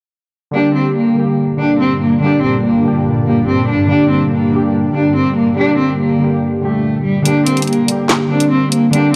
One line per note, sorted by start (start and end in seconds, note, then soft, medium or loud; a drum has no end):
0.51 7.21 G2 medium
0.51 7.21 A#2 medium
0.51 0.98 D3 medium
0.51 0.99 G3 medium
0.51 7.21 G3 medium
0.51 1.00 A#3 medium
0.51 0.73 D4 loud
0.51 7.21 D4 medium
0.56 1.01 G4 loud
0.75 0.94 C4 medium
0.96 1.35 A#3 medium
1.14 1.46 D3 medium
1.14 1.47 G3 medium
1.14 1.48 A#3 medium
1.19 1.49 G4 medium
1.57 2.04 D3 medium
1.57 2.05 G3 medium
1.57 2.05 A#3 medium
1.57 1.78 D4 medium
1.62 2.06 G4 medium
1.80 1.99 C4 medium
2.01 2.20 A#3 medium
2.21 2.67 D3 medium
2.21 2.68 G3 medium
2.21 2.69 A#3 medium
2.21 2.41 D4 loud
2.26 2.70 G4 loud
2.43 2.62 C4 medium
2.64 3.03 A#3 medium
2.82 2.91 D3 medium
2.82 2.92 G3 medium
2.82 2.93 A#3 medium
2.88 2.94 G4 medium
2.92 3.17 D3 medium
2.92 3.18 G3 medium
2.92 3.18 A#3 medium
2.98 3.19 G4 medium
3.24 3.71 D3 medium
3.24 3.72 G3 medium
3.24 3.46 A#3 medium
3.24 3.73 A#3 medium
3.29 3.74 G4 medium
3.48 3.67 C4 medium
3.69 3.88 D4 medium
3.87 4.34 D3 medium
3.87 4.35 G3 medium
3.87 4.36 A#3 medium
3.87 4.09 D4 loud
3.92 4.37 G4 loud
4.11 4.30 C4 medium
4.32 4.71 A#3 medium
4.50 4.82 D3 medium
4.50 4.83 G3 medium
4.50 4.84 A#3 medium
4.56 4.85 G4 medium
4.92 5.39 D3 medium
4.92 5.40 G3 medium
4.92 5.41 A#3 medium
4.92 5.14 D4 medium
4.98 5.42 G4 medium
5.16 5.35 C4 medium
5.37 5.56 A#3 medium
5.55 6.02 D3 medium
5.55 6.03 G3 medium
5.55 6.04 A#3 medium
5.55 5.77 D4 loud
5.60 6.05 G4 loud
5.79 5.98 C4 medium
6.00 6.39 A#3 medium
6.19 6.27 D3 medium
6.19 6.28 G3 medium
6.19 6.29 A#3 medium
6.24 6.30 G4 medium
6.29 6.53 D3 medium
6.29 6.54 G3 medium
6.29 6.55 A#3 medium
6.34 6.55 G4 medium
6.60 7.09 A#2 medium
6.60 7.07 D3 medium
6.60 7.08 G3 medium
6.60 7.02 A3 medium
6.65 7.10 G4 medium
7.04 7.24 G3 medium
7.22 7.47 D3 medium
7.22 7.48 G3 loud
7.22 7.49 A#3 medium
7.22 7.44 D4 loud
7.22 closed hi-hat medium
7.28 7.49 G4 loud
7.46 7.65 C4 medium
7.46 closed hi-hat medium
7.55 7.79 D3 medium
7.55 7.80 G3 medium
7.55 7.81 A#3 medium
7.55 closed hi-hat medium
7.60 7.81 G4 medium
7.60 closed hi-hat medium
7.67 8.07 A#3 medium
7.67 closed hi-hat soft
7.73 closed hi-hat soft
7.86 8.18 D3 medium
7.86 8.19 G3 medium
7.86 8.20 A#3 medium
7.86 closed hi-hat medium
7.92 8.21 G4 medium
8.09 snare loud
8.09 clap medium
8.28 8.75 D3 medium
8.28 8.76 G3 medium
8.28 8.77 A#3 medium
8.28 8.49 D4 medium
8.33 8.78 C4 medium
8.40 closed hi-hat medium
8.51 8.70 C4 medium
8.72 8.91 A#3 medium
8.72 closed hi-hat medium
8.91 9.15 D3 loud
8.91 9.16 G3 medium
8.91 9.16 A#3 medium
8.91 9.12 D4 loud
8.91 closed hi-hat medium
8.96 9.16 G4 loud